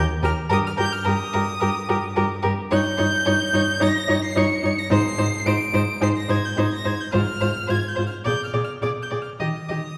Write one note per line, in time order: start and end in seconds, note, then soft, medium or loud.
0.22 0.30 D#2 medium
0.22 0.31 G4 medium
0.22 0.31 A#4 medium
0.22 0.32 F6 medium
0.49 0.58 G2 medium
0.49 0.60 G4 medium
0.49 0.57 A#4 medium
0.49 0.58 D#6 loud
0.67 0.72 F6 medium
0.77 0.86 G2 medium
0.77 0.87 G4 medium
0.77 0.85 A#4 medium
0.77 0.94 G6 loud
0.92 1.08 F6 medium
1.04 1.14 G2 medium
1.04 1.15 G4 medium
1.04 1.12 A#4 medium
1.04 2.43 D#6 loud
1.33 1.42 G2 medium
1.33 1.43 G4 medium
1.33 1.41 A#4 medium
1.60 1.69 G2 medium
1.60 1.70 G4 medium
1.60 1.68 A#4 medium
1.89 1.97 G2 medium
1.89 1.97 G4 medium
1.89 1.97 A#4 medium
2.16 2.25 G2 medium
2.16 2.25 G4 medium
2.16 2.24 A#4 medium
2.43 2.52 G2 medium
2.43 2.51 G4 medium
2.43 2.51 A#4 medium
2.71 2.79 G2 medium
2.71 2.79 D#4 medium
2.71 2.79 C#5 medium
2.71 3.84 G6 loud
2.97 3.07 G2 medium
2.97 3.07 D#4 medium
2.97 3.05 C#5 medium
3.25 3.35 G2 medium
3.25 3.34 D#4 medium
3.25 3.33 C#5 medium
3.53 3.61 G2 medium
3.53 3.61 D#4 medium
3.53 3.62 C#5 medium
3.80 3.89 G2 medium
3.80 3.88 D#4 medium
3.80 3.90 C#5 medium
3.80 4.23 A#6 loud
4.08 4.17 G2 medium
4.08 4.16 D#4 medium
4.08 4.17 C#5 medium
4.24 4.39 C7 loud
4.36 4.44 G2 medium
4.36 4.44 D#4 medium
4.36 4.45 C#5 medium
4.36 4.80 C#7 loud
4.63 4.72 G2 medium
4.63 4.71 D#4 medium
4.63 4.73 C#5 medium
4.78 4.91 A#6 loud
4.90 4.98 G#2 medium
4.90 4.98 D#4 medium
4.90 5.00 C5 medium
4.90 5.48 C7 loud
5.18 5.26 G#2 medium
5.18 5.26 D#4 medium
5.18 5.26 C5 medium
5.46 5.54 G#2 medium
5.46 5.54 D#4 medium
5.46 5.55 C5 medium
5.46 6.01 D7 loud
5.73 5.82 G#2 medium
5.73 5.81 D#4 medium
5.73 5.82 C5 medium
6.01 6.09 G#2 medium
6.01 6.09 D#4 medium
6.01 6.10 C5 medium
6.01 6.08 C7 loud
6.17 6.32 A#6 loud
6.29 6.37 G#2 medium
6.29 6.37 D#4 medium
6.29 6.37 C5 medium
6.29 6.46 G#6 loud
6.45 6.60 G6 medium
6.57 6.65 G#2 medium
6.57 6.65 D#4 medium
6.57 6.66 C5 medium
6.57 6.72 G#6 medium
6.73 6.88 A#6 medium
6.85 6.93 G#2 medium
6.85 6.93 D#4 medium
6.85 6.93 C5 medium
6.85 7.02 G#6 medium
7.01 7.12 G6 medium
7.12 7.21 G#2 medium
7.12 7.21 F4 medium
7.12 7.20 C5 medium
7.12 7.71 F6 loud
7.41 7.49 G#2 medium
7.41 7.49 F4 medium
7.41 7.49 C5 medium
7.67 7.77 G#2 medium
7.67 7.77 F4 medium
7.67 7.75 C5 medium
7.67 7.90 G#6 medium
7.88 8.06 G6 medium
7.96 8.05 G#2 medium
7.96 8.05 F4 medium
7.96 8.04 C5 medium
8.06 8.14 F6 medium
8.24 8.33 A#2 medium
8.24 8.35 G#4 medium
8.24 8.32 D5 medium
8.24 8.43 G6 medium
8.44 8.52 F6 medium
8.53 8.62 A#2 medium
8.53 8.62 G#4 medium
8.53 8.61 D5 soft
8.64 8.72 F6 medium
8.82 8.90 A#2 medium
8.82 8.90 G#4 medium
8.82 8.90 D5 soft
8.82 8.90 D6 medium
9.02 9.10 G6 medium
9.10 9.19 A#2 soft
9.10 9.20 G#4 soft
9.10 9.18 D5 soft
9.22 9.29 F6 medium
9.40 9.48 D#3 medium
9.40 9.49 G4 soft
9.40 9.48 D#5 soft
9.40 9.98 D#6 medium
9.69 9.78 D#3 soft
9.69 9.79 G4 soft
9.69 9.77 D#5 soft